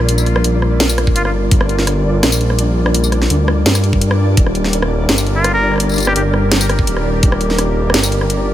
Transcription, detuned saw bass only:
0.00 0.43 A#1 loud
0.44 1.14 A#1 loud
1.16 1.50 G1 loud
1.52 2.22 G1 loud
2.23 3.29 A#1 loud
3.30 3.64 D2 loud
3.66 4.36 G2 loud
4.37 5.07 D#1 loud
5.09 6.14 G1 loud
6.16 6.86 G1 loud
6.87 7.22 D#1 loud
7.23 7.93 D#1 loud
7.94 8.54 G1 loud

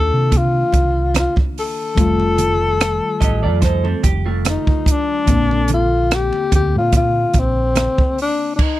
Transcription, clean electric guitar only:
3.20 3.42 G4 soft
3.20 3.42 D#5 medium
3.43 3.62 F4 medium
3.43 3.61 D5 medium
3.62 3.84 D#4 medium
3.62 3.83 C5 medium
3.84 4.03 C4 medium
3.84 4.03 A4 medium
4.03 4.25 G4 medium
4.26 5.24 A3 medium
4.26 5.24 F4 medium

